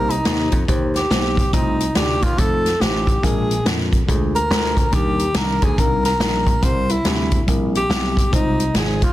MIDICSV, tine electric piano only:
0, 0, Header, 1, 2, 480
1, 0, Start_track
1, 0, Tempo, 424628
1, 1731, Time_signature, 4, 2, 24, 8
1, 10318, End_track
2, 0, Start_track
2, 0, Title_t, "Tine electric piano"
2, 0, Program_c, 0, 4
2, 0, Note_on_c, 0, 48, 54
2, 0, Note_on_c, 0, 58, 85
2, 0, Note_on_c, 0, 63, 80
2, 0, Note_on_c, 0, 67, 77
2, 0, Note_on_c, 0, 72, 102
2, 153, Note_off_c, 0, 58, 0
2, 156, Note_off_c, 0, 63, 0
2, 159, Note_off_c, 0, 67, 0
2, 164, Note_off_c, 0, 72, 0
2, 282, Note_on_c, 0, 58, 69
2, 287, Note_on_c, 0, 63, 65
2, 297, Note_on_c, 0, 67, 60
2, 305, Note_on_c, 0, 72, 68
2, 551, Note_off_c, 0, 48, 0
2, 632, Note_off_c, 0, 58, 0
2, 635, Note_off_c, 0, 63, 0
2, 640, Note_off_c, 0, 67, 0
2, 644, Note_off_c, 0, 72, 0
2, 760, Note_on_c, 0, 58, 82
2, 769, Note_on_c, 0, 63, 82
2, 775, Note_on_c, 0, 67, 80
2, 780, Note_on_c, 0, 72, 94
2, 1111, Note_off_c, 0, 58, 0
2, 1115, Note_off_c, 0, 63, 0
2, 1118, Note_off_c, 0, 67, 0
2, 1121, Note_off_c, 0, 72, 0
2, 1245, Note_on_c, 0, 58, 72
2, 1252, Note_on_c, 0, 63, 65
2, 1260, Note_on_c, 0, 67, 67
2, 1267, Note_on_c, 0, 72, 79
2, 1593, Note_off_c, 0, 58, 0
2, 1597, Note_off_c, 0, 63, 0
2, 1601, Note_off_c, 0, 67, 0
2, 1604, Note_off_c, 0, 72, 0
2, 1724, Note_on_c, 0, 57, 79
2, 1730, Note_on_c, 0, 63, 83
2, 1736, Note_on_c, 0, 48, 57
2, 1741, Note_on_c, 0, 65, 81
2, 1746, Note_on_c, 0, 72, 90
2, 2073, Note_off_c, 0, 57, 0
2, 2076, Note_off_c, 0, 63, 0
2, 2081, Note_off_c, 0, 65, 0
2, 2083, Note_off_c, 0, 72, 0
2, 2203, Note_on_c, 0, 57, 69
2, 2213, Note_on_c, 0, 63, 60
2, 2219, Note_on_c, 0, 65, 69
2, 2221, Note_on_c, 0, 74, 76
2, 2471, Note_off_c, 0, 48, 0
2, 2552, Note_off_c, 0, 57, 0
2, 2557, Note_off_c, 0, 63, 0
2, 2560, Note_off_c, 0, 65, 0
2, 2561, Note_off_c, 0, 74, 0
2, 2673, Note_on_c, 0, 57, 79
2, 2683, Note_on_c, 0, 63, 66
2, 2693, Note_on_c, 0, 65, 64
2, 2698, Note_on_c, 0, 69, 78
2, 3027, Note_off_c, 0, 57, 0
2, 3032, Note_off_c, 0, 63, 0
2, 3037, Note_off_c, 0, 65, 0
2, 3039, Note_off_c, 0, 69, 0
2, 3162, Note_on_c, 0, 57, 73
2, 3168, Note_on_c, 0, 63, 61
2, 3172, Note_on_c, 0, 65, 63
2, 3182, Note_on_c, 0, 72, 84
2, 3511, Note_off_c, 0, 57, 0
2, 3514, Note_off_c, 0, 63, 0
2, 3516, Note_off_c, 0, 65, 0
2, 3521, Note_off_c, 0, 72, 0
2, 3640, Note_on_c, 0, 56, 84
2, 3647, Note_on_c, 0, 46, 57
2, 3648, Note_on_c, 0, 62, 78
2, 3651, Note_on_c, 0, 65, 73
2, 3660, Note_on_c, 0, 70, 91
2, 3990, Note_off_c, 0, 56, 0
2, 3994, Note_off_c, 0, 62, 0
2, 3996, Note_off_c, 0, 65, 0
2, 4000, Note_off_c, 0, 70, 0
2, 4114, Note_on_c, 0, 56, 65
2, 4118, Note_on_c, 0, 62, 60
2, 4126, Note_on_c, 0, 65, 60
2, 4130, Note_on_c, 0, 70, 76
2, 4386, Note_off_c, 0, 46, 0
2, 4467, Note_off_c, 0, 56, 0
2, 4469, Note_off_c, 0, 62, 0
2, 4473, Note_off_c, 0, 65, 0
2, 4475, Note_off_c, 0, 70, 0
2, 4600, Note_on_c, 0, 56, 84
2, 4604, Note_on_c, 0, 62, 78
2, 4605, Note_on_c, 0, 65, 78
2, 4619, Note_on_c, 0, 68, 91
2, 4950, Note_off_c, 0, 56, 0
2, 4952, Note_off_c, 0, 62, 0
2, 4953, Note_off_c, 0, 65, 0
2, 4960, Note_off_c, 0, 68, 0
2, 5085, Note_on_c, 0, 56, 73
2, 5092, Note_on_c, 0, 62, 61
2, 5100, Note_on_c, 0, 65, 60
2, 5105, Note_on_c, 0, 70, 73
2, 5433, Note_off_c, 0, 56, 0
2, 5436, Note_off_c, 0, 62, 0
2, 5440, Note_off_c, 0, 65, 0
2, 5443, Note_off_c, 0, 70, 0
2, 5558, Note_on_c, 0, 55, 82
2, 5566, Note_on_c, 0, 62, 76
2, 5567, Note_on_c, 0, 51, 55
2, 5571, Note_on_c, 0, 63, 77
2, 5576, Note_on_c, 0, 70, 96
2, 5909, Note_off_c, 0, 55, 0
2, 5913, Note_off_c, 0, 62, 0
2, 5916, Note_off_c, 0, 63, 0
2, 5919, Note_off_c, 0, 70, 0
2, 6049, Note_on_c, 0, 55, 66
2, 6057, Note_on_c, 0, 62, 64
2, 6064, Note_on_c, 0, 63, 63
2, 6071, Note_on_c, 0, 70, 72
2, 6306, Note_off_c, 0, 51, 0
2, 6395, Note_off_c, 0, 55, 0
2, 6399, Note_off_c, 0, 62, 0
2, 6402, Note_off_c, 0, 63, 0
2, 6406, Note_off_c, 0, 70, 0
2, 6534, Note_on_c, 0, 55, 67
2, 6541, Note_on_c, 0, 62, 69
2, 6548, Note_on_c, 0, 63, 62
2, 6555, Note_on_c, 0, 70, 78
2, 6877, Note_off_c, 0, 55, 0
2, 6881, Note_off_c, 0, 62, 0
2, 6885, Note_off_c, 0, 63, 0
2, 6888, Note_off_c, 0, 70, 0
2, 7008, Note_on_c, 0, 55, 74
2, 7011, Note_on_c, 0, 62, 58
2, 7016, Note_on_c, 0, 63, 63
2, 7026, Note_on_c, 0, 70, 78
2, 7355, Note_off_c, 0, 55, 0
2, 7356, Note_off_c, 0, 62, 0
2, 7359, Note_off_c, 0, 63, 0
2, 7364, Note_off_c, 0, 70, 0
2, 7486, Note_on_c, 0, 55, 92
2, 7489, Note_on_c, 0, 60, 75
2, 7494, Note_on_c, 0, 48, 53
2, 7499, Note_on_c, 0, 64, 70
2, 7507, Note_on_c, 0, 70, 101
2, 7834, Note_off_c, 0, 55, 0
2, 7835, Note_off_c, 0, 60, 0
2, 7841, Note_off_c, 0, 64, 0
2, 7845, Note_off_c, 0, 70, 0
2, 7962, Note_on_c, 0, 55, 69
2, 7975, Note_on_c, 0, 60, 60
2, 7980, Note_on_c, 0, 64, 65
2, 7985, Note_on_c, 0, 67, 76
2, 8230, Note_off_c, 0, 48, 0
2, 8312, Note_off_c, 0, 55, 0
2, 8319, Note_off_c, 0, 60, 0
2, 8321, Note_off_c, 0, 64, 0
2, 8324, Note_off_c, 0, 67, 0
2, 8437, Note_on_c, 0, 55, 82
2, 8447, Note_on_c, 0, 60, 69
2, 8452, Note_on_c, 0, 64, 80
2, 8461, Note_on_c, 0, 70, 83
2, 8790, Note_off_c, 0, 55, 0
2, 8795, Note_off_c, 0, 60, 0
2, 8797, Note_off_c, 0, 64, 0
2, 8802, Note_off_c, 0, 70, 0
2, 8918, Note_on_c, 0, 55, 69
2, 8926, Note_on_c, 0, 60, 59
2, 8930, Note_on_c, 0, 64, 67
2, 8938, Note_on_c, 0, 67, 73
2, 9271, Note_off_c, 0, 55, 0
2, 9275, Note_off_c, 0, 60, 0
2, 9276, Note_off_c, 0, 64, 0
2, 9280, Note_off_c, 0, 67, 0
2, 9388, Note_on_c, 0, 56, 78
2, 9400, Note_on_c, 0, 63, 85
2, 9401, Note_on_c, 0, 48, 52
2, 9405, Note_on_c, 0, 65, 81
2, 9414, Note_on_c, 0, 72, 82
2, 9746, Note_off_c, 0, 56, 0
2, 9752, Note_off_c, 0, 63, 0
2, 9754, Note_off_c, 0, 65, 0
2, 9759, Note_off_c, 0, 72, 0
2, 9875, Note_on_c, 0, 56, 70
2, 9881, Note_on_c, 0, 63, 59
2, 9887, Note_on_c, 0, 65, 59
2, 9896, Note_on_c, 0, 72, 70
2, 10145, Note_off_c, 0, 48, 0
2, 10229, Note_off_c, 0, 56, 0
2, 10233, Note_off_c, 0, 63, 0
2, 10236, Note_off_c, 0, 65, 0
2, 10240, Note_off_c, 0, 72, 0
2, 10318, End_track
0, 0, End_of_file